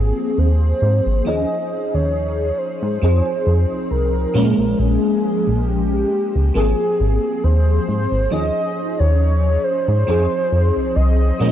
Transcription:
Already playing: G#1 F3 A#3 C4 G#4
0.38 D#2 C5
0.82 G#2
1.06 G#1
1.25 D#2 F3 C#4 D#4 G#4 D#5
1.94 D#2 C#5
2.58 C5
2.83 G#2
3.01 F2 F3 C4 D#4 G#4
3.47 F2
3.91 C2 A#4
4.34 A#2 F3 G#3 A#3 C#4
4.59 A#1
4.79 A#1 G#4
5.47 A#1
5.67 G4
6.36 C#2
6.54 G#1 F3 A#3 C4 G#4
7.00 G#1
7.44 D#2 C5
7.88 G#2
8.12 G#1
8.30 D#2 F3 C#4 D#4 G#4 D#5
8.99 D#2 C#5
9.64 C5
9.88 G#2
10.07 F2 F3 C4 D#4 G#4
10.52 F2
10.76 C2
10.96 C2 D#5
11.39 A#2 F3 G#3 A#3 C#4

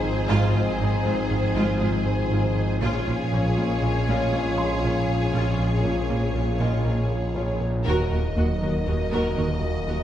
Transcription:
Already playing: G#1 F3 G#3 C4 D#4 G#4 C5 G#5
0.04 G#2
0.29 G#1 G#2 F4 A#5
0.54 G#1 G#2 F4
0.80 G#1 G#2 D#4
1.05 G#1 G#2 G#3 F4
1.30 G#1 G#2 F4
1.56 G#1 G#2 F4
1.81 G#1 G#2 G#3 F4
2.06 G#2 G#5
2.31 G#1 G#2 F4
2.57 G#2
2.81 A#1 A#2 F3 G#3 C#4 F4 G#4 C#5
3.07 A#1 A#2 F4
3.32 A#1 A#2 C#4
3.57 A#1 A#2 A#3 F4
3.82 A#1 A#2 F4
4.07 A#1 A#2 F4
4.32 A#1 A#2 A#3 F4
4.58 A#2 C6
4.83 A#1 A#2 F4
5.09 A#2
5.34 A#1 A#2 F4
5.59 A#1 A#2 F4
5.84 A#1 A#2 C#4
6.09 A#1 A#2 A#3 F4
6.35 A#1 A#2 F4
6.60 A#1 A#2 F4 D#5
6.85 A#1 A#2 A#3 F4
7.11 A#2
7.35 A#1 A#2 F4 C#5
7.61 A#2
7.86 D#1 D#2 D#3 F#3 A#3 D#4 F#4 A#4 D#5
8.11 D#2 F#4 A#4
8.36 D#2 F#4
8.62 D#2 D#3 F#4 A#4
8.86 D#2 F#4 A#4
9.12 D#2 F#4 A#4
9.37 D#2 D#3 F#4 A#4
9.62 D#2
9.87 D#2 F#4 A#4

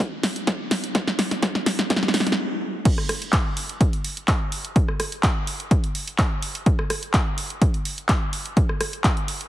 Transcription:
0.23 snare, open hi-hat
0.36 closed hi-hat
0.47 kick, snare, closed hi-hat
0.71 snare, open hi-hat
0.84 closed hi-hat
0.95 kick, snare, closed hi-hat
1.07 snare
1.19 snare, open hi-hat
1.31 snare, closed hi-hat
1.42 kick, snare, closed hi-hat
1.55 snare
1.66 snare, open hi-hat
1.79 snare, closed hi-hat
1.90 kick, snare, closed hi-hat
1.96 snare
2.03 snare
2.08 snare
2.14 snare, open hi-hat
2.20 snare
2.27 snare, closed hi-hat
2.32 snare
2.85 kick, closed hi-hat, crash
2.98 cross-stick
3.09 cross-stick, open hi-hat
3.22 closed hi-hat
3.33 kick, clap, closed hi-hat
3.57 open hi-hat
3.69 closed hi-hat
3.81 kick, closed hi-hat
3.93 closed hi-hat
4.04 open hi-hat
4.17 closed hi-hat
4.28 kick, clap, closed hi-hat
4.52 open hi-hat
4.65 closed hi-hat
4.76 kick, closed hi-hat
4.88 cross-stick
5.00 cross-stick, open hi-hat
5.12 closed hi-hat
5.23 kick, clap, closed hi-hat
5.47 open hi-hat
5.60 closed hi-hat
5.71 kick, closed hi-hat
5.84 closed hi-hat
5.95 open hi-hat
6.07 closed hi-hat
6.18 kick, clap, closed hi-hat
6.42 open hi-hat
6.55 closed hi-hat
6.66 kick, closed hi-hat
6.79 cross-stick
6.90 cross-stick, open hi-hat
7.03 closed hi-hat
7.14 kick, clap, closed hi-hat
7.38 open hi-hat
7.50 closed hi-hat
7.62 kick, closed hi-hat
7.74 closed hi-hat
7.85 open hi-hat
7.98 closed hi-hat
8.09 kick, clap, closed hi-hat
8.33 open hi-hat
8.46 closed hi-hat
8.57 kick, closed hi-hat
8.69 cross-stick
8.81 cross-stick, open hi-hat
8.93 closed hi-hat
9.04 kick, clap, closed hi-hat
9.17 closed hi-hat
9.28 open hi-hat
9.41 closed hi-hat

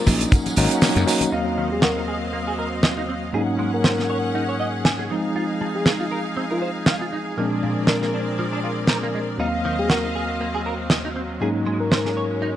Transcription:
Already playing: C4 G#4 D5
0.06 A#1 F#3 A#3 C#4 D#4, kick, open hi-hat, tambourine, high conga
0.20 closed hi-hat, tambourine, maracas
0.31 C#4 F#5, kick, closed hi-hat, tambourine, maracas
0.46 closed hi-hat, tambourine, high conga, maracas
0.56 G#1 F#3 A#3 C#4 D#4, open hi-hat, tambourine
0.71 closed hi-hat, tambourine, maracas
0.82 snare, open hi-hat, tambourine, maracas
0.96 F#2, closed hi-hat, tambourine, maracas
1.06 F#3 A#3 C#4 D#4, open hi-hat, tambourine
1.21 closed hi-hat, tambourine, high conga, maracas
1.32 D#2 F#3 A#3 C4 D#4 D#5 F5
1.58 D#3
1.72 G#4
1.82 F#4 A#4, snare
1.97 D#4
2.08 G#4
2.33 A#3
2.47 G#4
2.59 A#4
2.83 D#5, snare
2.98 D#4
3.08 C4
3.33 G#2 F#3 A#3 C#4 D#4 G#4 F#5
3.59 G#3
3.73 A#4
3.84 C5, snare
3.98 G#4, snare
4.10 C#5
4.35 D#4
4.49 C#5
4.60 D#5
4.85 G#5, snare
4.99 G#4
5.10 F3 G#3 C4 D#4 F5
5.36 F4
5.61 F3
5.75 G#4
5.86 G#4, snare
6.00 F4
6.11 A#4
6.37 C4
6.51 F4 A#4
6.62 C5
6.86 F5, snare
7.01 F4
7.13 D#4
7.37 A#2 F3 G#3 A#3 C4 D4 A#4 D5
7.63 A#2
7.87 D4 A#4, snare
8.02 A#3 A#4, snare
8.14 D4
8.39 F3
8.53 D4
8.64 F4
8.87 A#4, snare
9.03 A#3
9.14 G#3
9.38 D#2 F#3 A#3 C4 D#4 D#5 F5
9.65 D#3
9.79 G#4
9.90 F#4 A#4, snare
10.04 D#4
10.15 G#4
10.41 A#3
10.55 G#4
10.66 A#4
10.90 D#5, snare
11.05 D#4
11.16 C4
11.40 G#2 F#3 G#3 A#3 C#4 D#4 G#4
11.66 G#3
11.80 A#4
11.92 C5, snare
12.05 G#4, snare
12.17 C#5
12.42 D#4

